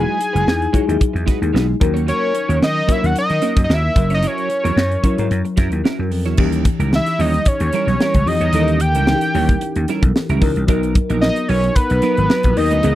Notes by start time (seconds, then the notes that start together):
Already playing: F#3 G#3 D#4 E4 F#4 G#4 B4 G#5
0.19 muted clean electric guitar stroke, closed hi-hat
0.33 F#1 G#3 D#4 F#4 B4, closed hi-hat
0.47 E2, snare
0.61 muted clean electric guitar stroke, closed hi-hat
0.73 F#3 G#3 D#4 E4 F#4 G#4 C#5, kick, closed hi-hat
0.87 D#2 F#3 D#4 E4 G#4, muted clean electric guitar stroke, closed hi-hat
1.00 muted clean electric guitar stroke, kick, closed hi-hat
1.13 E2, muted clean electric guitar stroke, closed hi-hat
1.26 G#3 D#4 F#4 B4, kick, snare, closed hi-hat
1.41 D#2, muted clean electric guitar stroke, closed hi-hat
1.53 B1 G#3 D#4 F#4 B4, snare
1.68 muted clean electric guitar stroke
1.80 D#2 F#3 C#4 D#4 A#4, muted clean electric guitar stroke, kick, closed hi-hat
1.94 A#3 C#4 F#4 C#5, closed hi-hat
2.07 A#3 C#4 F#4 A#4 C#5, closed hi-hat
2.34 muted clean electric guitar stroke, closed hi-hat
2.48 D#2 A#3 C#4 F#4 A#4, closed hi-hat
2.62 D#3 D#5, snare
2.75 muted clean electric guitar stroke
2.87 F#3 A#3 C#4 D#4 F#4 A#4 C#5, kick, closed hi-hat
2.92 E5
3.02 D#2 F#3 C#4 D#4 A#4 F#5, muted clean electric guitar stroke, closed hi-hat
3.15 D#5, muted clean electric guitar stroke, muted slap bass stroke, closed hi-hat
3.29 D#3, muted clean electric guitar stroke, closed hi-hat
3.42 A#3 C#4 F#4 A#4, snare, closed hi-hat
3.57 F#2, kick, snare, closed hi-hat
3.64 D#5
3.69 D#2 A#3 C#4 F#4 A#4, snare
3.74 E5
3.84 muted clean electric guitar stroke
3.95 F#1 F#3 C#4 E4 A#4, muted clean electric guitar stroke, kick, closed hi-hat
4.10 F#3 C#4 E4 C#5, closed hi-hat
4.14 D#5
4.23 F#3 C#4 E4 A#4, closed hi-hat
4.27 C#5
4.38 closed hi-hat
4.50 muted clean electric guitar stroke, closed hi-hat
4.64 E2 F#3 C#4 E4 A#4, closed hi-hat
4.76 F#2, snare
4.91 muted clean electric guitar stroke, closed hi-hat
5.03 F#3 C#4 E4 A#4 C#5, kick, closed hi-hat
5.17 G#2 F#3 C#4 E4 A#4, muted clean electric guitar stroke, closed hi-hat
5.30 F#2, muted clean electric guitar stroke, closed hi-hat
5.45 muted clean electric guitar stroke, closed hi-hat
5.57 F#2 F#3 C#4 E4 A#4, kick, snare, closed hi-hat
5.72 D#2, muted clean electric guitar stroke, closed hi-hat
5.84 F#3 C#4 E4 A#4, snare
5.99 F#2, muted clean electric guitar stroke
6.11 F2, muted clean electric guitar stroke, open hi-hat
6.26 E2 F#3 C#4 E4 C#5, snare, closed hi-hat
6.37 D#2 E3 G3 C#4 D#4 E4 G4 A#4, kick, crash
6.52 closed hi-hat
6.65 muted clean electric guitar stroke, kick, closed hi-hat
6.79 C#2 G3 C#4 E4 A#4, closed hi-hat
6.92 E3 C#4 D#4 G4 E5, snare
7.06 muted clean electric guitar stroke, snare, closed hi-hat
7.19 D#2 G3 C#4 E4 C#5 D#5, open hi-hat
7.34 muted clean electric guitar stroke, closed hi-hat
7.45 C#5, muted clean electric guitar stroke, kick, closed hi-hat
7.60 D#2, muted clean electric guitar stroke, closed hi-hat
7.73 G3 C#4 E4 A#4, snare, closed hi-hat
7.87 B1, muted clean electric guitar stroke, snare, closed hi-hat
8.00 G3 C#4 E4 A#4, snare
8.14 C#2, muted clean electric guitar stroke, kick, closed hi-hat
8.26 F2 E3 C#4 D#4 G4 D#5, muted clean electric guitar stroke, open hi-hat
8.41 E2 G3 C#4 E4 C#5, closed hi-hat
8.53 D#2 E3 G3 C#4 D#4 E4 A4 A#4, closed hi-hat
8.60 A#4
8.68 closed hi-hat
8.80 G5, muted clean electric guitar stroke, closed hi-hat
8.95 C#2 G3 C#4 E4 A#4, closed hi-hat
9.07 E3 C#4 D#4 E4, snare
9.15 G4
9.21 muted clean electric guitar stroke, closed hi-hat
9.34 D#2 G3 C#4 E4 C#5, open hi-hat
9.49 muted clean electric guitar stroke, kick, closed hi-hat
9.61 muted clean electric guitar stroke, closed hi-hat
9.76 D#2, muted clean electric guitar stroke, closed hi-hat
9.88 G3 C#4 E4 A#4, snare, closed hi-hat
10.03 B1, muted clean electric guitar stroke, kick, closed hi-hat
10.16 muted clean electric guitar stroke, snare
10.29 C#2 G3 C#4 E4 A#4, closed hi-hat
10.40 C#2 E3 C#4 D#4 A#4, muted clean electric guitar stroke, kick, open hi-hat
10.56 C2, muted clean electric guitar stroke, closed hi-hat
10.67 B1 F#3 B3 D#4 A#4, kick, closed hi-hat
10.83 closed hi-hat
10.95 muted clean electric guitar stroke, kick, closed hi-hat
11.10 A#1 F#3 B3 D#4 A#4, closed hi-hat
11.21 F#3 B3 D#4 A#4 D#5, snare
11.36 muted clean electric guitar stroke, closed hi-hat
11.42 D#5
11.48 B1 F#3 B3 D#4 B4 C#5, open hi-hat
11.63 muted clean electric guitar stroke, closed hi-hat
11.75 B4, muted clean electric guitar stroke, kick, closed hi-hat
11.90 B1, muted clean electric guitar stroke, closed hi-hat
12.02 F#3 B3 D#4 A#4, snare, closed hi-hat
12.17 G#1, muted clean electric guitar stroke, closed hi-hat
12.29 F#3 B3 D#4 A#4, snare
12.43 A#1, muted clean electric guitar stroke, kick, closed hi-hat
12.55 D#2 F#3 B3 D#4 A#4 D#5, muted clean electric guitar stroke, open hi-hat
12.71 D2 F#3 B3 D#4 B4, closed hi-hat
12.82 C#2 E3 B3 C#4 E4 G#4 B4, closed hi-hat